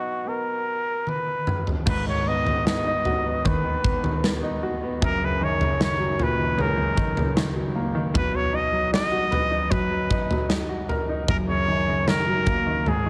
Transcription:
0.00 1.82 B2 medium
0.00 0.62 F#3 soft
0.00 0.24 B3 soft
0.00 1.42 D#4 soft
0.00 0.30 F#4 medium
0.25 1.82 B3 soft
0.25 1.10 A#4 medium
1.07 1.68 B4 medium
1.07 high tom soft
1.47 mid tom medium
1.67 floor tom medium
1.86 4.98 G#1 medium
1.86 4.98 G#2 medium
1.86 2.06 B4 medium
1.86 kick loud
1.86 floor tom loud
1.86 crash medium
2.06 2.44 D#3 soft
2.06 2.29 C#5 medium
2.26 2.64 B3 medium
2.26 2.67 D#5 medium
2.45 3.43 D#3 soft
2.45 floor tom medium
2.66 3.24 B3 medium
2.66 3.48 D#5 medium
2.66 snare loud
2.86 4.40 D#4 medium
3.05 4.59 F#4 medium
3.05 floor tom medium
3.25 3.83 B3 soft
3.45 4.98 D#2 medium
3.45 3.62 D#3 medium
3.45 4.25 B4 medium
3.45 kick medium
3.45 floor tom medium
3.64 4.02 D#3 medium
3.84 4.22 B3 medium
3.84 kick loud
4.03 4.99 D#3 medium
4.03 floor tom medium
4.23 4.82 B3 medium
4.23 snare loud
4.43 5.00 D#4 medium
4.63 5.01 F#4 medium
4.83 5.02 B3 medium
5.02 8.11 F#1 medium
5.02 8.11 F#2 medium
5.02 5.26 A#4 loud
5.02 kick loud
5.02 floor tom loud
5.22 5.59 C#3 medium
5.22 5.45 B4 medium
5.41 5.78 D#3 medium
5.41 5.82 C#5 loud
5.60 6.56 C#3 medium
5.60 floor tom medium
5.80 6.37 D#3 medium
5.80 6.24 C#5 medium
5.80 snare loud
6.00 7.52 F#3 medium
6.19 7.72 A#2 medium
6.19 6.63 B4 medium
6.19 floor tom medium
6.38 6.95 D#3 medium
6.58 8.11 C#2 medium
6.58 6.76 C#3 medium
6.58 7.38 A#4 medium
6.58 floor tom medium
6.78 7.16 C#3 medium
6.97 7.35 D#3 medium
6.97 kick medium
7.17 8.12 C#3 medium
7.17 floor tom medium
7.36 7.93 D#3 medium
7.36 snare loud
7.56 8.13 F#3 soft
7.75 8.14 A#3 medium
7.95 8.14 D#3 medium
8.14 11.24 B1 medium
8.14 11.24 B2 medium
8.14 8.37 B4 loud
8.14 kick loud
8.14 floor tom loud
8.34 8.71 F#3 medium
8.34 8.57 C#5 medium
8.53 8.91 D#4 medium
8.53 8.92 D#5 loud
8.72 9.69 F#3 medium
8.92 9.49 D#4 medium
8.92 9.72 D#5 loud
8.92 snare loud
9.12 10.65 F#4 medium
9.31 10.85 B4 medium
9.31 floor tom medium
9.51 10.09 D#4 soft
9.70 11.24 F#2 medium
9.70 9.89 F#3 medium
9.70 10.50 B4 medium
9.70 kick medium
9.70 floor tom medium
9.90 10.29 F#3 medium
10.10 10.47 D#4 medium
10.10 kick loud
10.31 11.26 F#3 medium
10.31 floor tom medium
10.49 11.08 D#4 medium
10.49 snare loud
10.69 11.26 F#4 medium
10.89 11.27 A#4 medium
10.89 floor tom medium
11.09 11.28 D#4 medium
11.28 12.82 F#1 medium
11.28 12.82 F#2 medium
11.28 11.37 A#4 loud
11.28 kick loud
11.28 floor tom loud
11.48 11.86 C#3 medium
11.48 12.09 C#5 loud
11.68 12.06 D#3 medium
11.88 12.83 C#3 soft
12.07 12.65 D#3 medium
12.07 12.90 A#4 loud
12.07 snare loud
12.27 12.85 F#3 medium
12.46 12.85 A#3 medium
12.46 kick medium
12.46 floor tom medium
12.66 12.86 D#3 medium
12.86 13.10 G#1 medium
12.86 13.10 G#2 medium
12.86 13.10 G#4 medium
12.86 floor tom medium
13.06 13.10 D#3 medium

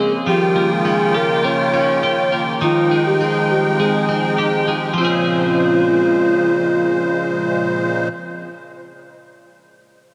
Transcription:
0.00 2.58 C#3 medium
0.00 0.26 F3 medium
0.00 0.22 G#3 medium
0.00 0.22 A#3 medium
0.00 0.32 C4 soft
0.00 0.85 C#4 soft
0.00 0.12 G#4 medium
0.00 0.32 G#4 medium
0.26 2.59 D#3 medium
0.26 2.61 F3 medium
0.26 2.59 F4 medium
0.26 0.73 G4 medium
0.26 4.93 G5 medium
0.56 1.43 A#3 soft
0.72 1.17 G#4 loud
0.85 1.72 C#4 medium
1.14 2.03 G4 medium
1.14 1.46 A#4 medium
1.44 2.31 A#3 soft
1.44 2.33 C#5 loud
1.74 2.68 C#4 soft
2.03 2.94 G4 medium
2.32 2.68 A#3 soft
2.61 4.93 D#3 medium
2.61 4.95 F3 medium
2.61 4.95 G#3 medium
2.61 4.94 D#4 medium
2.61 3.03 F4 medium
2.91 3.79 G#3 soft
3.07 3.24 G4 medium
3.21 4.08 C4 soft
3.21 3.53 G#4 medium
3.52 3.82 G4 medium
3.80 4.67 G#3 soft
3.80 4.68 G#4 medium
4.09 4.98 C4 soft
4.38 5.03 G4 medium
4.68 4.97 G#3 soft
4.94 8.09 A#2 medium
4.94 8.44 F3 medium
4.94 8.09 G#3 medium
4.94 8.08 C5 medium
4.98 8.09 C#3 medium
4.98 8.48 C4 medium
4.98 8.51 C#4 medium
4.98 8.09 F4 medium
5.05 8.55 G#4 medium

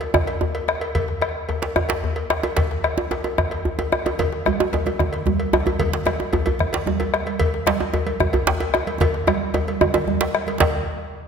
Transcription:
0.01 bombo rim soft
0.01 cowbell medium
0.14 bombo rim loud
0.14 bombo low loud
0.14 djembe tone loud
0.27 cowbell medium
0.27 djembe slap medium
0.41 bombo rim soft
0.41 djembe tone medium
0.41 djembe bass medium
0.55 bombo rim soft
0.55 cowbell medium
0.68 bombo rim loud
0.68 djembe slap medium
0.81 cowbell medium
0.95 bombo low loud
0.95 cowbell medium
0.95 djembe bass medium
1.08 djembe slap medium
1.22 bombo rim loud
1.22 cowbell medium
1.22 djembe tone medium
1.49 cowbell soft
1.49 djembe slap medium
1.49 djembe bass medium
1.62 bombo rim soft
1.62 cowbell medium
1.62 djembe slap medium
1.76 bombo rim loud
1.76 bombo low loud
1.76 djembe tone medium
1.89 cowbell medium
1.89 djembe slap medium
2.03 bombo rim soft
2.03 djembe tone medium
2.03 djembe bass medium
2.16 bombo rim soft
2.16 cowbell medium
2.30 bombo rim loud
2.30 djembe slap medium
2.43 cowbell medium
2.43 djembe tone loud
2.56 bombo rim soft
2.56 bombo low loud
2.56 cowbell medium
2.56 djembe slap medium
2.56 djembe bass medium
2.71 djembe slap medium
2.84 bombo rim loud
2.84 cowbell soft
2.84 djembe slap soft
2.84 djembe tone medium
2.98 bombo rim soft
2.98 djembe tone loud
3.11 cowbell soft
3.11 djembe slap medium
3.11 djembe tone medium
3.24 cowbell medium
3.24 djembe tone medium
3.38 bombo rim loud
3.38 bombo low loud
3.38 djembe tone medium
3.51 cowbell soft
3.51 djembe slap medium
3.65 djembe bass medium
3.65 djembe bass soft
3.79 bombo rim soft
3.79 cowbell medium
3.79 djembe tone medium
3.79 djembe bass medium
3.92 bombo rim loud
3.92 djembe slap medium
3.92 djembe tone medium
4.06 bombo rim soft
4.06 cowbell medium
4.06 djembe slap medium
4.06 djembe tone loud
4.19 bombo low medium
4.19 cowbell medium
4.19 djembe tone medium
4.19 low conga medium
4.19 djembe bass medium
4.32 djembe slap medium
4.46 bombo rim loud
4.46 cowbell soft
4.46 high conga medium
4.46 djembe tone medium
4.46 djembe bass medium
4.59 high conga soft
4.59 djembe tone loud
4.73 cowbell medium
4.73 djembe slap medium
4.73 djembe tone medium
4.73 djembe bass medium
4.86 bombo rim soft
4.86 cowbell medium
4.86 high conga medium
4.86 djembe tone medium
4.99 bombo rim medium
4.99 bombo low medium
4.99 djembe tone medium
4.99 low conga medium
5.13 cowbell soft
5.13 djembe slap medium
5.13 high conga soft
5.26 bombo rim soft
5.26 high conga medium
5.26 djembe tone loud
5.26 djembe bass medium
5.40 bombo rim soft
5.40 cowbell medium
5.53 bombo rim loud
5.53 djembe slap loud
5.53 djembe bass loud
5.66 cowbell medium
5.66 high conga medium
5.66 djembe bass loud
5.79 bombo low loud
5.79 cowbell medium
5.79 low conga medium
5.79 djembe bass loud
5.93 djembe slap medium
6.06 bombo rim loud
6.06 cowbell medium
6.06 high conga medium
6.06 djembe tone medium
6.19 high conga soft
6.19 djembe tone medium
6.33 cowbell medium
6.33 djembe slap medium
6.33 djembe bass medium
6.33 djembe bass loud
6.46 bombo rim soft
6.46 cowbell medium
6.46 high conga medium
6.46 djembe bass medium
6.59 bombo rim medium
6.59 bombo low loud
6.59 low conga medium
6.73 cowbell medium
6.73 djembe slap medium
6.86 bombo rim soft
6.86 high conga medium
6.86 djembe tone medium
6.86 djembe bass medium
7.00 bombo rim soft
7.00 cowbell medium
7.00 djembe tone medium
7.14 bombo rim loud
7.14 djembe slap medium
7.26 cowbell medium
7.26 high conga medium
7.39 bombo low medium
7.39 cowbell medium
7.39 low conga medium
7.39 djembe bass medium
7.54 djembe slap medium
7.66 bombo rim loud
7.66 cowbell medium
7.66 djembe slap loud
7.66 high conga medium
7.66 djembe tone medium
7.79 high conga soft
7.79 djembe tone medium
7.94 cowbell medium
7.94 djembe slap medium
7.94 djembe tone medium
7.94 djembe bass medium
8.06 bombo rim soft
8.06 cowbell medium
8.06 high conga medium
8.20 bombo rim loud
8.20 bombo low loud
8.20 low conga medium
8.20 djembe bass medium
8.33 cowbell medium
8.33 djembe slap medium
8.33 djembe bass loud
8.47 bombo rim soft
8.47 djembe slap loud
8.47 djembe tone medium
8.47 djembe bass medium
8.60 bombo rim soft
8.60 cowbell medium
8.60 djembe tone medium
8.74 bombo rim loud
8.74 djembe slap medium
8.74 djembe tone medium
8.87 cowbell medium
8.87 high conga medium
9.00 bombo low loud
9.00 cowbell medium
9.00 djembe tone loud
9.00 low conga medium
9.00 djembe bass medium
9.14 djembe slap medium
9.27 bombo rim loud
9.27 cowbell soft
9.27 djembe slap soft
9.27 high conga medium
9.27 djembe tone loud
9.27 djembe tone medium
9.41 djembe slap soft
9.54 bombo rim soft
9.54 cowbell medium
9.54 djembe slap medium
9.54 djembe tone loud
9.54 djembe bass medium
9.68 cowbell medium
9.68 high conga medium
9.81 bombo rim medium
9.81 bombo low medium
9.81 djembe slap soft
9.81 djembe tone loud
9.81 low conga medium
9.94 bombo rim soft
9.94 cowbell medium
9.94 djembe slap medium
9.94 djembe tone loud
10.07 bombo rim soft
10.07 high conga medium
10.07 djembe tone medium
10.07 djembe bass medium
10.21 cowbell medium
10.21 djembe slap medium
10.21 high conga soft
10.35 bombo rim loud
10.35 djembe slap medium
10.47 bombo rim soft
10.47 cowbell medium
10.47 high conga medium
10.60 bombo low medium
10.60 cowbell medium
10.60 djembe slap loud
10.60 low conga medium
10.60 djembe bass medium

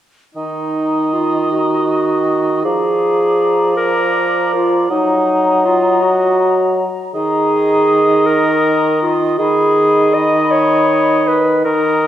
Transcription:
0.35 2.61 D#3 soft
0.35 1.14 D#4 medium
0.35 2.61 D#5 soft
0.35 2.62 A#5 soft
1.13 1.51 F4 soft
1.51 2.63 F#4 medium
2.64 4.87 F3 soft
2.64 3.75 G#4 medium
2.64 4.92 D5 soft
2.64 4.87 A#5 soft
3.77 4.52 A#4 medium
4.54 4.90 F4 medium
4.90 6.84 F#3 soft
4.90 5.67 D#4 medium
4.90 6.89 D#5 soft
4.90 7.11 A#5 soft
5.66 6.04 F4 medium
6.02 6.89 F#4 medium
7.14 9.35 D#3 soft
7.14 8.28 G#4 medium
7.14 9.35 D#5 soft
7.14 9.12 A#5 soft
8.26 9.02 A#4 medium
9.02 9.40 F4 medium
9.38 11.61 D#3 medium
9.38 10.16 G#4 medium
9.38 11.61 D#5 medium
9.38 11.61 B5 soft
10.14 10.53 D#5 medium
10.51 11.29 C#5 medium
11.27 11.64 B4 medium
11.64 12.07 D#3 soft
11.64 12.07 A#4 medium
11.64 12.07 D#5 soft
11.64 12.07 A#5 soft

